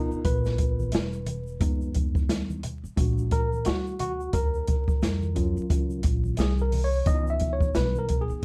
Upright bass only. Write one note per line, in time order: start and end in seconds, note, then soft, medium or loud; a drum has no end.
0.11 muted upright bass stroke soft
0.25 0.90 A#1 medium
0.93 1.58 E1 medium
1.61 2.29 F2 medium
2.29 2.81 D#2 medium
2.84 muted upright bass stroke soft
2.97 3.62 A#1 medium
3.66 4.30 D2 medium
4.33 4.98 D#2 medium
5.02 5.54 F2 medium
5.57 muted upright bass stroke soft
5.70 6.03 C#2 medium
6.04 6.37 A#1 medium
6.38 7.03 C2 medium
7.06 7.71 C#2 medium
7.75 8.26 B1 medium
8.30 muted upright bass stroke soft